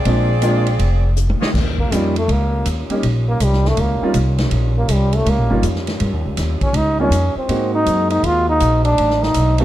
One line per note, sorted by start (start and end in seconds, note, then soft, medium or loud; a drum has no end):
0.00 1.17 C4 medium
0.00 1.17 F4 medium
0.00 1.17 G#4 medium
0.00 1.17 D5 medium
0.05 0.76 A#1 medium
0.05 0.27 G#3 medium
0.05 0.27 A#3 medium
0.05 0.27 C4 medium
0.05 0.28 D4 medium
0.05 0.28 F4 medium
0.05 ride medium
0.42 0.64 G#3 medium
0.42 0.64 A#3 medium
0.42 0.64 C4 medium
0.42 0.65 D4 medium
0.42 0.65 F4 medium
0.42 hi-hat pedal medium
0.42 ride medium
0.67 ride medium
0.79 1.37 F1 medium
0.79 ride medium
1.16 hi-hat pedal medium
1.30 mid tom soft
1.40 1.50 F4 medium
1.40 1.50 G4 medium
1.40 1.50 C#5 medium
1.40 1.50 D#5 medium
1.40 muted upright bass stroke soft
1.40 snare medium
1.54 1.90 D#2 medium
1.54 7.45 D#3 medium
1.54 7.45 G3 medium
1.54 7.45 C#4 medium
1.54 7.45 F4 medium
1.54 kick medium
1.54 snare soft
1.54 crash medium
1.78 1.96 A#3 medium
1.78 kick soft
1.91 2.27 F2 medium
1.91 2.13 G3 soft
1.91 2.17 G3 medium
1.91 2.13 A#3 soft
1.91 2.14 C#4 soft
1.91 2.14 D#4 soft
1.91 2.14 F4 medium
1.91 hi-hat pedal medium
1.91 ride medium
2.16 2.33 A3 medium
2.16 ride soft
2.28 2.64 C#2 medium
2.28 2.67 A#3 medium
2.28 ride medium
2.65 2.88 D#2 medium
2.65 hi-hat pedal medium
2.65 ride medium
2.89 3.02 G3 medium
2.89 3.02 A#3 medium
2.89 3.03 C#4 medium
2.89 3.03 D#4 medium
2.89 3.03 G4 medium
2.89 muted upright bass stroke soft
2.89 ride soft
3.03 3.39 A#1 medium
3.03 ride medium
3.29 3.46 A#3 medium
3.40 3.76 C2 medium
3.40 hi-hat pedal medium
3.40 ride medium
3.44 3.69 G3 medium
3.53 snare soft
3.65 3.83 A3 medium
3.65 snare soft
3.77 4.00 C#2 medium
3.77 ride medium
3.81 4.16 A#3 medium
4.01 4.14 G3 medium
4.01 4.14 A#3 medium
4.01 4.14 C#4 medium
4.01 4.15 D#4 medium
4.01 4.14 F4 medium
4.01 muted upright bass stroke soft
4.14 4.50 C2 medium
4.14 hi-hat pedal soft
4.14 ride medium
4.38 snare medium
4.38 ride soft
4.51 4.87 A#1 medium
4.51 ride medium
4.78 4.95 A#3 medium
4.88 5.25 C2 medium
4.88 hi-hat pedal medium
4.88 ride medium
4.93 5.17 G3 medium
5.13 5.31 A3 medium
5.13 ride soft
5.26 5.38 C#2 loud
5.26 ride medium
5.30 5.65 A#3 medium
5.38 5.50 A#1 medium
5.50 5.62 G1 medium
5.50 5.62 G3 medium
5.50 5.62 A#3 medium
5.50 5.62 C#4 medium
5.50 5.62 D#4 medium
5.50 5.62 F4 medium
5.62 5.99 F2 medium
5.62 hi-hat pedal medium
5.62 ride medium
5.76 snare soft
5.87 snare soft
5.87 ride soft
6.00 6.13 G2 medium
6.00 ride medium
6.13 6.25 D#2 medium
6.26 6.37 C#2 medium
6.37 6.60 D#2 medium
6.37 snare soft
6.37 hi-hat pedal soft
6.37 ride medium
6.61 6.79 C#4 medium
6.61 muted upright bass stroke soft
6.61 kick medium
6.61 ride soft
6.73 7.09 C#2 medium
6.73 7.00 D#4 medium
6.73 ride medium
7.00 7.11 G3 medium
7.00 7.11 A#3 medium
7.00 7.11 C#4 medium
7.00 7.34 C#4 medium
7.00 7.12 D#4 medium
7.00 7.12 F4 medium
7.10 7.33 F2 medium
7.10 hi-hat pedal medium
7.10 ride medium
7.35 7.72 C4 medium
7.35 muted upright bass stroke soft
7.48 7.85 G#2 medium
7.48 8.96 G#3 medium
7.48 8.53 G#3 medium
7.48 8.96 A#3 medium
7.48 8.53 A#3 medium
7.48 9.65 C4 medium
7.48 8.53 C4 soft
7.48 8.53 D#4 medium
7.48 8.96 F#4 medium
7.48 8.53 F#4 medium
7.48 ride medium
7.75 8.09 D#4 medium
7.86 8.22 F#2 medium
7.86 hi-hat pedal soft
7.86 ride medium
8.10 8.27 D#4 medium
8.10 ride soft
8.23 8.59 D#2 medium
8.23 8.48 F4 loud
8.23 ride medium
8.49 8.83 D#4 medium
8.60 8.97 A#1 loud
8.60 hi-hat pedal medium
8.60 ride medium
8.85 9.24 D4 medium
8.85 ride soft
8.96 9.34 A1 medium
8.96 9.65 F#3 medium
8.96 9.65 A3 medium
8.96 9.65 D#4 medium
8.96 ride medium
9.10 snare soft
9.23 9.60 D#4 medium
9.23 snare soft
9.34 9.65 B1 medium
9.34 hi-hat pedal medium
9.34 ride medium
9.58 9.65 A3 medium
9.58 9.65 B3 medium
9.58 9.65 C4 medium
9.58 9.65 D#4 medium
9.58 9.65 F#4 medium
9.58 ride soft